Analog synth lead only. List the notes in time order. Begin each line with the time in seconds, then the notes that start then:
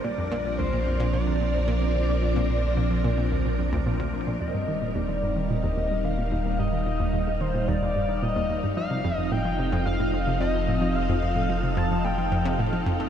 0.04 D5
0.58 C5
1.13 D5
4.40 D#5
4.95 D5
5.50 D#5
6.04 F5
6.59 D#5
7.41 C5
7.68 D5
8.22 D#5
8.77 F5
9.17 D#5
9.32 G5
9.86 F5
10.41 D#5
10.95 F5
11.77 A5
12.04 G5
12.59 F5